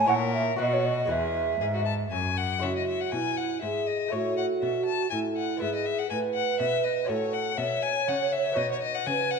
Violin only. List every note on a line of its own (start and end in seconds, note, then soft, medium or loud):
0.07 0.58 A#4 medium
0.59 1.11 F#4 medium
1.10 1.56 G#4 medium
1.60 1.66 G#4 medium
1.74 1.85 F#4 medium
1.85 1.93 A5 medium
2.11 2.39 G#5 medium
2.37 2.64 F#5 medium
2.62 2.75 E5 medium
2.76 2.87 D#5 medium
2.87 3.02 E5 medium
3.01 3.13 F#5 medium
3.11 3.39 G#5 medium
3.37 3.61 F#5 medium
3.61 3.88 E5 medium
3.87 4.13 D#5 medium
4.12 4.37 C#5 medium
4.37 4.45 F#5 medium
4.62 4.85 E5 medium
4.86 5.10 A5 medium
5.10 5.18 G#5 medium
5.37 5.61 F#5 medium
5.62 5.74 E5 medium
5.75 5.87 D#5 medium
5.86 6.00 E5 medium
5.99 6.09 F#5 medium
6.10 6.18 G#5 medium
6.34 6.59 F#5 medium
6.60 6.85 E5 medium
6.84 7.10 D#5 medium
7.09 7.35 C#5 medium
7.33 7.59 F#5 medium
7.57 7.84 E5 medium
7.82 8.10 G#5 medium
8.08 8.34 F#5 medium
8.32 8.58 E5 medium
8.57 8.69 D#5 medium
8.71 8.82 C#5 medium
8.82 8.96 D#5 medium
8.95 9.08 F#5 medium
9.06 9.32 G#5 medium
9.31 9.39 F#5 medium